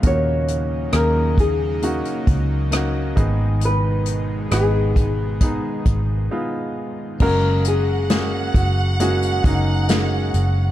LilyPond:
<<
  \new Staff \with { instrumentName = "Violin section" } { \time 4/4 \key fis \major \tempo 4 = 67 r1 | r1 | fis''1 | }
  \new Staff \with { instrumentName = "Nylon-string guitar" } { \time 4/4 \key fis \major cis''4 ais'8 gis'8 fis'4. r8 | b'4 gis'4 dis'4. r8 | ais'8 gis'4 fis'8 fis'8 dis'4 r8 | }
  \new Staff \with { instrumentName = "Grand piano" } { \time 4/4 \key fis \major <ais cis' dis' fis'>4 <ais cis' dis' gis'>4 <ais cis' dis' fis'>4 <ais cis' dis' fis'>8 <gis b dis' gis'>8~ | <gis b dis' gis'>4 <gis b dis' b'>4 <gis b dis' gis'>4 <gis b dis' eis'>4 | <gis ais cis' fis' gis'>4 <gis ais cis' fis' gis'>4 <gis ais cis' fis' gis'>8 <gis ais cis' fis' gis'>8 <gis ais cis' fis' gis'>4 | }
  \new Staff \with { instrumentName = "Grand piano" } { \clef bass \time 4/4 \key fis \major ais,4. r2 <gis, dis>8~ | <gis, dis>4 r2. | cis4. r2 r8 | }
  \new Staff \with { instrumentName = "Analog synth pad" } { \clef bass \time 4/4 \key fis \major << { dis'1~ | dis'1 | r1 | } \\ { <cis fis ais>2.~ <cis fis ais>8 <b, dis gis>8~ | <b, dis gis>1 | r1 | } >> }
  \new Staff \with { instrumentName = "Fingered electric bass" } { \clef bass \time 4/4 \key fis \major dis,4 dis,4~ dis,16 r16 cis,4 gis,,8~ | gis,,4 gis,,4~ gis,,16 r16 gis,,8 r4 | fis,,4. fis,,4 fis,,4 fis,,8 | }
  \new DrumStaff \with { instrumentName = "Drums" } \drummode { \time 4/4 <hh bd>8 hh8 <hh ss>8 <hh bd>8 hh16 hh16 <hh bd>8 <hh ss>8 <hh bd>8 | hh8 hh8 <hh ss>8 <hh bd>8 <hh bd>8 <hh bd>8 r4 | <cymc bd>8 hh8 <hh sn>8 <hh bd>8 hh16 hh16 <hh bd>8 <hh sn>8 hh8 | }
>>